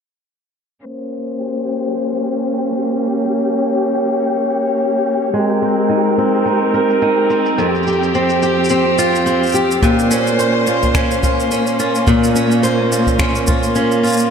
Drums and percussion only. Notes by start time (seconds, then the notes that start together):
0.87 shaker
1.02 shaker
1.14 shaker
1.30 shaker
1.42 shaker
1.58 shaker
1.70 shaker
1.85 shaker
1.98 shaker
2.26 shaker
2.42 shaker
2.55 shaker
2.83 shaker
2.99 shaker
3.10 shaker
3.19 shaker
3.38 shaker
3.54 shaker
3.67 shaker
3.83 shaker
3.86 shaker
3.91 shaker
3.95 shaker
4.09 shaker
4.13 shaker
4.16 shaker
4.19 shaker
4.22 shaker
4.50 shaker
4.66 shaker
4.78 shaker
5.06 shaker
5.22 shaker
5.34 shaker
5.50 shaker
5.62 shaker
5.78 shaker
5.91 shaker
6.07 shaker
6.18 shaker
6.34 shaker
6.47 shaker
6.74 shaker
6.90 shaker
7.02 shaker
7.30 shaker
7.46 shaker
7.59 shaker
7.75 shaker
7.83 shaker
7.87 shaker
7.93 shaker
8.03 shaker
8.15 shaker
8.30 shaker
8.43 shaker
8.65 shaker
8.69 shaker
8.99 shaker
9.15 shaker
9.27 shaker
9.43 shaker
9.46 shaker
9.49 shaker
9.52 shaker
9.55 shaker
9.71 shaker
9.82 kick, shaker
9.99 shaker
10.11 shaker
10.27 shaker
10.39 shaker
10.67 shaker
10.83 kick, shaker
10.95 finger snap, kick, shaker
11.11 shaker
11.23 kick, shaker
11.40 shaker
11.51 shaker
11.67 shaker
11.80 shaker
11.95 shaker
12.07 kick, shaker
12.24 shaker
12.36 shaker
12.51 shaker
12.64 shaker
12.92 shaker
13.07 kick, shaker
13.19 finger snap, kick, shaker
13.35 shaker
13.47 kick, shaker
13.63 shaker
13.75 shaker
13.92 shaker
14.04 shaker
14.07 shaker
14.09 shaker
14.12 shaker
14.17 shaker
14.19 shaker